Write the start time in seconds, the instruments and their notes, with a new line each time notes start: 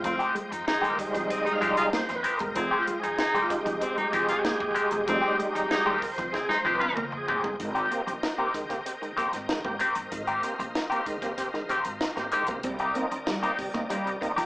Already playing: tonewheel organ F4 C5 D#5 G5
0.04 upright bass F1, clean electric guitar F3, baritone saxophone C4, muted clean electric guitar stroke, kick, closed hi-hat
0.19 clean electric guitar D#3 G#3 C4 G4, muted clean electric guitar stroke, closed hi-hat
0.35 clean electric guitar G#3, muted upright bass stroke, closed hi-hat
0.51 upright bass F2, baritone saxophone D#4, muted clean electric guitar stroke, closed hi-hat
0.67 baritone saxophone D#4, tonewheel organ G#4, muted clean electric guitar stroke, muted upright bass stroke, snare
0.81 upright bass D#2, clean electric guitar D#3 G#3 C4 G4, closed hi-hat
0.90 tonewheel organ A#4
0.98 tonewheel organ G3 G#3 D#4, muted clean electric guitar stroke, kick, closed hi-hat
1.10 clean electric guitar F3, tonewheel organ C5, muted clean electric guitar stroke
1.15 upright bass C2, kick, snare, closed hi-hat
1.29 baritone saxophone C4, tonewheel organ D#5, muted clean electric guitar stroke, kick, closed hi-hat
1.45 clean electric guitar G#3, baritone saxophone D#4, muted clean electric guitar stroke, closed hi-hat
1.53 tonewheel organ F5
1.61 upright bass C2, clean electric guitar D#3 F3 G#3 C4 G4, kick, closed hi-hat
1.73 baritone saxophone F4, tonewheel organ D#5, muted clean electric guitar stroke, closed hi-hat
1.93 clean electric guitar A#3, tonewheel organ C5, muted clean electric guitar stroke, snare
2.09 upright bass F2, muted clean electric guitar stroke, snare, closed hi-hat
2.16 tonewheel organ B4
2.23 clean electric guitar D#3 G#3 C4 G4, muted clean electric guitar stroke, closed hi-hat
2.37 upright bass E1, clean electric guitar G#3, tonewheel organ A#4, muted clean electric guitar stroke, kick, closed hi-hat
2.55 upright bass F1, clean electric guitar F3, baritone saxophone C4, tonewheel organ G#4, muted clean electric guitar stroke, kick, closed hi-hat
2.71 clean electric guitar D#3 G#3 C4 G4, muted clean electric guitar stroke
2.79 tonewheel organ F4
2.87 clean electric guitar G#3, muted clean electric guitar stroke, muted upright bass stroke, closed hi-hat
3.00 upright bass F2, baritone saxophone D#4, tonewheel organ G#4, muted clean electric guitar stroke, closed hi-hat
3.18 baritone saxophone D#4, muted clean electric guitar stroke, muted upright bass stroke, snare
3.35 upright bass D#2, clean electric guitar D#3 G#3 C4 G4, closed hi-hat
3.42 tonewheel organ F4
3.50 tonewheel organ G#3 D#4 G4, muted clean electric guitar stroke, kick, snare, closed hi-hat
3.62 upright bass C2, tonewheel organ D#4, muted clean electric guitar stroke
3.66 clean electric guitar F3, kick, snare, closed hi-hat
3.81 baritone saxophone C4, tonewheel organ C4, muted clean electric guitar stroke, closed hi-hat
3.97 clean electric guitar G#3, baritone saxophone D#4, muted clean electric guitar stroke, closed hi-hat
4.12 upright bass C2, clean electric guitar D#3 F3 G#3 C4 G4, tonewheel organ G#4, kick, snare, closed hi-hat
4.28 baritone saxophone F4, muted clean electric guitar stroke, snare, closed hi-hat
4.43 clean electric guitar A#3, muted clean electric guitar stroke, snare
4.59 upright bass F2, muted clean electric guitar stroke, kick
4.74 clean electric guitar D#3 G#3 C4 G4, muted clean electric guitar stroke, closed hi-hat
4.90 upright bass E1, clean electric guitar G#3, muted clean electric guitar stroke, closed hi-hat
5.06 upright bass F1, clean electric guitar F3, tonewheel organ G3 G#3 D#4, baritone saxophone C4, muted clean electric guitar stroke, kick, closed hi-hat
5.21 clean electric guitar D#3 G#3 C4 G4, muted clean electric guitar stroke
5.37 clean electric guitar G#3, muted clean electric guitar stroke, muted upright bass stroke, closed hi-hat
5.54 upright bass F2, baritone saxophone D#4, muted clean electric guitar stroke, closed hi-hat
5.70 baritone saxophone D#4, tonewheel organ G#4, muted clean electric guitar stroke, muted upright bass stroke, snare
5.86 upright bass D#2, clean electric guitar D#3 G#3 C4 G4
5.91 tonewheel organ A#4
6.02 muted clean electric guitar stroke, kick, snare, open hi-hat
6.12 tonewheel organ C5
6.18 upright bass C2, clean electric guitar F3, muted clean electric guitar stroke, kick, snare, closed hi-hat
6.32 baritone saxophone C4, tonewheel organ G#4, muted clean electric guitar stroke, kick, snare
6.49 clean electric guitar G#3, baritone saxophone D#4, muted clean electric guitar stroke, snare
6.53 tonewheel organ C5
6.65 upright bass C2, clean electric guitar D#3 F3 G#3 C4 G4
6.74 tonewheel organ B4
6.80 baritone saxophone F4, muted clean electric guitar stroke, high tom
6.96 clean electric guitar A#3, tonewheel organ A#4, muted clean electric guitar stroke, mid tom
7.12 upright bass F2, muted clean electric guitar stroke
7.17 tonewheel organ G#4
7.28 upright bass D#2, clean electric guitar D#3 G#3 C4 G4, muted clean electric guitar stroke, floor tom
7.44 upright bass G1, clean electric guitar G#3, muted clean electric guitar stroke, floor tom
7.59 upright bass G#1, tonewheel organ G#2 D#3 A#4 C5 D#5 G5, muted clean electric guitar stroke, kick, closed hi-hat
7.75 clean electric guitar D#3 A#3 C4 G4, closed hi-hat
7.91 tonewheel organ A#3 C4 G4, muted clean electric guitar stroke, closed hi-hat
8.07 upright bass A#1, tonewheel organ C4 G4, muted clean electric guitar stroke, closed hi-hat
8.23 muted clean electric guitar stroke, snare
8.38 clean electric guitar D#3 A#3 C4 G4, tonewheel organ A#3 C4 G4
8.54 tonewheel organ G#2 D#3, muted clean electric guitar stroke, kick, snare, closed hi-hat
8.69 tonewheel organ A#3 C4 G4, muted clean electric guitar stroke, kick, snare, closed hi-hat
8.86 tonewheel organ C4 G4, muted clean electric guitar stroke, closed hi-hat
9.02 tonewheel organ G#2 D#3, muted clean electric guitar stroke, closed hi-hat
9.17 clean electric guitar D#3 A#3 C4 G4, tonewheel organ A#3 C4 G4, muted upright bass stroke, kick, snare, closed hi-hat
9.33 upright bass G#1, muted clean electric guitar stroke, snare, closed hi-hat
9.48 tonewheel organ G#2 D#3, muted clean electric guitar stroke, snare
9.64 upright bass G#2, tonewheel organ A#3 C4 G4, muted clean electric guitar stroke, kick
9.79 clean electric guitar D#3 A#3 C4 G4, tonewheel organ C4 G4, closed hi-hat
9.95 upright bass G1, muted clean electric guitar stroke, closed hi-hat
10.12 upright bass G#1, tonewheel organ G#2 D#3 F5, muted clean electric guitar stroke, kick, closed hi-hat
10.27 clean electric guitar D#3 A#3 C4 G4, closed hi-hat
10.43 tonewheel organ A#3 C4 G4, muted clean electric guitar stroke, closed hi-hat
10.59 upright bass A#1, tonewheel organ C4 G4, muted clean electric guitar stroke, closed hi-hat
10.75 muted clean electric guitar stroke, snare
10.90 clean electric guitar D#3 A#3 C4 G4, tonewheel organ A#3 C4 G4, closed hi-hat
11.06 tonewheel organ G#2 D#3, muted clean electric guitar stroke, kick, closed hi-hat
11.22 tonewheel organ A#3 C4 G4, muted clean electric guitar stroke, kick, snare, closed hi-hat
11.37 tonewheel organ C4 G4, muted clean electric guitar stroke, kick, closed hi-hat
11.54 tonewheel organ G#2 D#3, muted clean electric guitar stroke, snare
11.69 clean electric guitar D#3 A#3 C4 G4, tonewheel organ C4 G4, muted upright bass stroke, kick, closed hi-hat
11.85 upright bass G#1, muted clean electric guitar stroke, closed hi-hat
12.01 muted clean electric guitar stroke, snare
12.16 upright bass G#2, tonewheel organ A#3 C4 G4, muted clean electric guitar stroke, snare, closed hi-hat
12.32 tonewheel organ G#2 D#3, clean electric guitar D#3 A#3 C4 G4, closed hi-hat
12.47 upright bass B1, tonewheel organ A#3 C4 G4, muted clean electric guitar stroke, kick, closed hi-hat
12.63 upright bass C2, tonewheel organ C3 G3 D5 D#5 G5, clean electric guitar C4, muted clean electric guitar stroke, kick, closed hi-hat
12.79 clean electric guitar G3 A#3 D#4 G4, muted clean electric guitar stroke, closed hi-hat
12.95 tonewheel organ A#3 C4 D#4, clean electric guitar C4, closed hi-hat
13.11 upright bass D#2, tonewheel organ C4 D#4, muted clean electric guitar stroke, closed hi-hat
13.27 clean electric guitar G3, muted clean electric guitar stroke, snare
13.42 clean electric guitar G3 A#3 D#4 G4, tonewheel organ A#3 C4 D#4, muted clean electric guitar stroke, closed hi-hat
13.58 tonewheel organ C3 G3, muted clean electric guitar stroke, kick, snare, open hi-hat
13.73 tonewheel organ A#3 C4 D#4, clean electric guitar A#3, muted clean electric guitar stroke, kick, snare, closed hi-hat
13.90 clean electric guitar G3 A#3 D#4 G4, tonewheel organ C4 D#4, closed hi-hat
14.05 tonewheel organ C3 G3, closed hi-hat
14.21 tonewheel organ A#3 C4 D#4, muted clean electric guitar stroke, muted upright bass stroke, kick, closed hi-hat
14.36 upright bass C2, clean electric guitar F3 G3 A#3 D#4 G4, snare, closed hi-hat